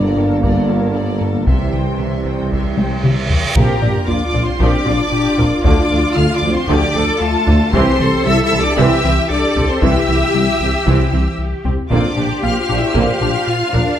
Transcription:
Already playing: G1 G2 D3 A#3 D4 A4 D5 A#5
0.16 G2 G4 A4 A#4 A5
0.41 G2 G3 A#3 A4 D5 A#5, taiko
0.69 G3 D4 A4 A#4 A5
0.94 G3 A#3 D4 A4 D5 A#5
1.21 G2 A#3 A4 A#4 A5
1.47 C2 C3 E3 G3 C4 G4 E5 C6, taiko, reverse cymbal
1.73 C2 C5 G5, taiko mid
1.99 C3 G4 E5 C6, taiko mid
2.25 C2 C4 C5 G5
2.51 C2 C3 G4 E5 C6, taiko
2.77 C3 G3 C5 G5, taiko high
3.04 C3 G3 G4 E5 C6, taiko mid
3.30 C2 E3 C5 G5, taiko low
3.56 A#1 A#2 F3 A#3 C4 F4 G4 A#4 A#5, taiko, sub drop
3.82 A#1 A#2 C4 D4
4.08 A#1 A#3 D4 F4 D5 D6
4.24 D4 D5 D6
4.34 A#1 A#2 C4 D4
4.42 C4 C5 C6
4.60 A#1 A#2 F3 A#3 C4 D4 G4 D5 D6, taiko
4.86 A#1 A#2 C4 D4 F4
5.12 A#2 G4
5.38 A#1 A#2 C4 F4 A#4, taiko low
5.64 D2 D3 F3 A3 D4 D5 D6, taiko
5.90 D2 F3 A3
6.15 D2 D3 F3 A3 F4 F5 F6
6.33 D4 D5 D6
6.42 D2 F3 A3
6.50 C4 C5 C6
6.67 D2 D3 F3 A3 D4 G4 D5 D6, taiko
6.95 D2 F3 A3 A4
7.20 D2 A3 F4 A4 A5
7.47 D2 A3 D4, taiko low
7.72 C2 C3 E3 C4 G4 C5 C6, taiko
7.99 C2 E3 C4 A4
8.25 C2 C3 G3 E4 E5 E6
8.42 E4 E5 E6
8.52 C2 E3 C4
8.60 D4 D5 D6
8.76 C2 C3 E3 C4 E4 G4 E5 E6, taiko
9.04 C2 E3 C4
9.29 C2 D4 A4 D5 D6
9.55 C2 C4, taiko low
9.69 C4 C5 C6
9.82 C2 C3 E3 C4 E4 G4 E5 E6, taiko
10.08 C2 E3 C4
10.34 C2 C3 G3
10.60 C2 E3 C4
10.86 C2 C3 E3 C4, taiko
11.12 C2 E3 C4
11.38 C2
11.64 C2 C4, taiko low
11.90 A#1 A#2 D3 A#3 C4 D4 F4 C5 D5 D6, taiko
12.17 A#1 A#2 D4 G4
12.43 A#1 A#3 C4 F4 F5 F6
12.59 F4 F5 F6
12.69 A#1 A#2 D4
12.78 E4 E5 E6
12.95 A#1 A#2 D3 A#3 C4 F4 F5 F6, taiko
13.21 A#1 A#2 D4
13.47 A#2 F4
13.73 A#1 A#2 D4 A#4, taiko low

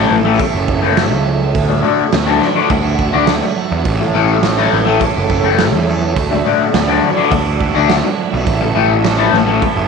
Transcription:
Already playing: A2 E3 A3 C#4 A4 E5
0.11 A1
0.25 A2 E3 A3
0.39 muted distorted electric guitar stroke, kick, open hi-hat
0.55 F#1
0.68 kick
0.83 A2 E3 A3
0.91 A3
0.97 snare, open hi-hat
1.11 C#2, muted distorted electric guitar stroke
1.52 D2 A2 D4 F#4, kick, open hi-hat
1.69 muted distorted electric guitar stroke
1.82 D3 A3 D4
2.12 D2 E3, muted distorted electric guitar stroke, snare, open hi-hat
2.26 D3 A3 D4
2.42 snare
2.55 D3 A3 D4
2.70 D2, muted distorted electric guitar stroke, kick, open hi-hat
2.75 A3
2.99 kick
3.13 D2 D3 A3 D4
3.27 snare, open hi-hat
3.37 A3
3.41 muted distorted electric guitar stroke
3.72 E2
3.85 A1 C#4 A4, kick, open hi-hat
3.98 A2, muted distorted electric guitar stroke
4.14 A1 A2 E3 A3
4.43 muted distorted electric guitar stroke, snare, open hi-hat
4.57 A2 E3 A3
4.73 A1
4.85 A2 E3 A3
5.01 muted distorted electric guitar stroke, kick, open hi-hat
5.16 F#1
5.20 A3
5.30 kick
5.43 A2 E3 A3
5.58 snare, open hi-hat
5.72 E2, muted distorted electric guitar stroke
5.83 A3
6.16 D2 D4 F#4 E5, kick, open hi-hat
6.31 muted distorted electric guitar stroke
6.44 A2 D3 A3 D4
6.74 D2, muted distorted electric guitar stroke, snare, open hi-hat
6.88 D3 A3 D4
7.04 E3
7.17 D3 A3 D4
7.31 D2, muted distorted electric guitar stroke, kick, open hi-hat
7.61 kick
7.66 A3
7.74 D2 D3 A3 D4
7.89 snare, open hi-hat
8.04 muted distorted electric guitar stroke
8.27 A3
8.33 B1
8.46 A1 C#4 A4, kick, open hi-hat
8.61 muted distorted electric guitar stroke
8.75 A1 A2 E3 A3
8.89 A2
9.04 muted distorted electric guitar stroke, snare, open hi-hat
9.18 A2 E3 A3
9.33 A1, snare
9.46 A2 E3 A3
9.61 muted distorted electric guitar stroke, kick, open hi-hat
9.76 F#1

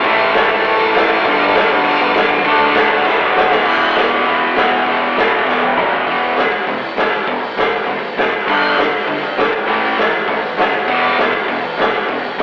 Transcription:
0.03 A1 A2 E3 A3, kick, crash
0.19 A2, crash
0.34 D2, snare, crash
0.49 A1 E3 A3, kick, crash
0.53 A2
0.65 A1, kick, crash
0.79 F#2, crash
0.95 E2, snare, crash
1.10 E1, kick, crash
1.24 G1 G2 D3 G3, kick, crash
1.40 G2, crash
1.55 B1, snare, crash
1.69 G1 G2 D3 G3, kick, crash
1.85 G1, kick, crash
2.00 E2, crash
2.15 D2, snare, crash
2.30 E2, kick, crash
2.44 D2 D3 A3, kick, crash
2.48 D4
2.60 D3, crash
2.75 F#2, snare, crash
2.89 D#2 D3 A3 D4, kick, crash
3.04 E1 E2 B2, kick, snare
3.08 E3
3.20 D2
3.36 B1, snare
3.49 B1 B2 E3, snare
3.53 E2
3.65 E1 E2 B2 E3, kick, crash
3.81 E1
3.95 E1 E2 B2 E3, snare, open hi-hat
4.11 E1, kick
4.25 E1 E2 B2 E3, kick, open hi-hat
4.56 E1 E2 B2 E3, snare, open hi-hat
4.71 E1, kick
4.86 E1 E2 B2 E3, kick, open hi-hat
5.02 E1
5.16 E1 E2 B2 E3, snare, open hi-hat
5.32 E1, kick
5.47 E1 E2 B2 E3, kick, snare
5.62 E1, high tom
5.76 E1 E2 B2 E3, mid tom
5.92 E1, floor tom
6.06 E1 E2 B2 E3, kick, open hi-hat
6.22 E1, open hi-hat
6.37 E1 E2 B2, snare, open hi-hat
6.52 kick, open hi-hat
6.67 E1 E2 B2, kick, open hi-hat
6.82 E2, open hi-hat
6.97 D2 E2 B2, snare, open hi-hat
7.12 E1, open hi-hat
7.27 E1 E2 B2, kick, open hi-hat
7.42 E1, open hi-hat
7.57 E1 E2 B2, snare, open hi-hat
7.73 kick, open hi-hat
7.87 E1 E2 B2, kick, open hi-hat
8.02 B1, open hi-hat
8.18 E1 E2 B2, snare, open hi-hat
8.33 G1, kick, open hi-hat
8.47 G1 G2 D3 G3, crash
8.63 G1, open hi-hat
8.77 G1 G2 D3, snare, open hi-hat
8.93 kick, open hi-hat
9.08 G1 G2 D3, kick, open hi-hat
9.23 G2, open hi-hat
9.37 E2 G2 D3, snare, open hi-hat
9.53 A1, kick, open hi-hat
9.67 A1 A2 E3 A3, open hi-hat
9.83 A1, open hi-hat
9.98 A1 A2 E3, snare, open hi-hat
10.13 kick, open hi-hat
10.27 A1 A2 E3, kick, open hi-hat
10.43 E2, open hi-hat
10.58 A1 A2 E3, snare, open hi-hat
10.73 D#2, open hi-hat
10.88 E1 E2 B2 E3, kick, crash
11.03 E1, open hi-hat
11.18 E1 E2 B2, snare, open hi-hat
11.33 kick, open hi-hat
11.48 E1 E2 B2, kick, open hi-hat
11.63 E2, open hi-hat
11.79 D2 E2 B2, snare, open hi-hat
11.94 E1, open hi-hat
12.09 E1 E2 B2, kick, open hi-hat
12.24 E1, open hi-hat
12.38 E1 E2 B2, open hi-hat

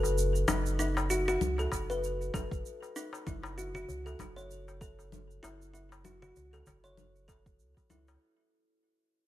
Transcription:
Already playing: F#1
0.03 darbuka tek, shaker
0.18 shaker
0.36 shaker
0.48 F#1 D#4, darbuka ka, darbuka tek, low conga, shaker
0.66 shaker
0.79 D#4, shaker
0.97 darbuka tek, shaker
1.10 F#4, shaker
1.28 F#4, darbuka ka, shaker
1.41 C#2, low conga, shaker
1.58 A4, darbuka ka, shaker
1.72 F#1, kick, darbuka tek, shaker
1.90 B4, shaker
2.04 shaker
2.21 shaker
2.34 F#1 A4, kick, darbuka tek, low conga, shaker
2.51 F#1, kick, shaker
2.66 shaker
2.82 darbuka tek, shaker
2.96 D#4, shaker
3.13 darbuka tek, shaker
3.27 F#1 E4, kick, low conga, shaker
3.43 darbuka tek, shaker
3.58 F#4, shaker
3.74 F#4, darbuka ka, darbuka dum, shaker
3.88 C#2, darbuka dum, shaker
4.06 A4, darbuka ka, shaker
4.19 F#1, kick, darbuka tek, low conga, shaker
4.36 C#5, shaker
4.51 shaker
4.68 darbuka ka, shaker
4.81 A4, kick, shaker
4.99 darbuka tek, shaker
5.12 low conga, shaker
5.31 shaker
5.43 F#1 E4, darbuka ka, darbuka tek, shaker
5.62 shaker
5.74 E4, shaker
5.92 darbuka tek, shaker
6.05 F#4, low conga, shaker
6.22 F#4, darbuka ka, darbuka dum, shaker
6.36 C#2, darbuka dum, shaker
6.53 A4, darbuka ka, shaker
6.66 F#1, kick, darbuka tek, darbuka dum, shaker
6.84 C#5, shaker
6.97 low conga, shaker
7.16 shaker
7.28 A4, kick, darbuka ka, darbuka tek, shaker
7.46 kick, shaker
7.59 C#2, shaker
7.77 kick, darbuka tek, shaker
7.90 C#2 E4, low conga, shaker
8.08 darbuka tek, shaker

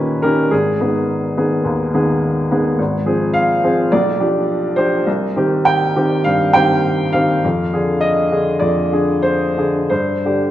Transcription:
Already playing: D#2 A#2 D#3 C#4 G4 B4 C#5
0.22 D#3 C#4 G4 A#4
0.51 G#1 G#4
0.80 D#3 B3 G#4
1.38 D#3 B3 G#4
1.65 D#2
1.94 D#3 B3 G#4
2.51 D#3 B3 G#4
2.79 G#1
3.05 F3 C4 G#4
3.33 F5
3.63 F3 C4 G#4
3.92 B1 D5
4.20 F3 D4 G4
4.76 F3 D4 G4 C5
5.07 C2
5.36 D#3 C4 G4
5.65 G5
5.96 D#3 C4 G4
6.24 G2 F5
6.54 D#3 C4 G4 G5
7.13 D#3 C4 G4 F5
7.44 F2
7.73 D3 D4 G#4
8.01 D#5
8.31 D3 D4 G#4
8.60 F2 D5
8.92 D3 D4 G#4
9.23 C5
9.57 D3 D4 G#4
9.90 G2 C5
10.25 D3 D4 G4

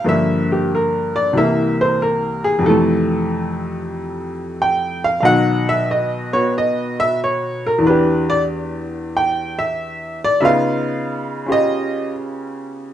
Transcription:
0.04 G2 D3 F3 A#3
0.09 E5
0.52 G4
0.75 A#4
1.16 D5
1.33 C2 C3 E3
1.38 A#3 E5
1.81 C5
2.02 A#4
2.44 G#4
2.59 F2 C3
2.66 E3 A3 A4
4.62 G5
5.04 F5
5.20 B2 D#3 F#3 F5
5.25 F#5
5.69 E5
5.91 D#5
6.33 B3 F#4 C#5
6.58 D#5
7.00 E5
7.24 C#5
7.67 A#4
7.78 E2 E3
7.86 D4 G4 B4
8.30 D5
9.17 G5
9.59 E5
10.24 D5
10.41 C#3 B3 D#4 F4 E5
10.45 F5
11.46 C#4 F4 G4
11.52 D#5

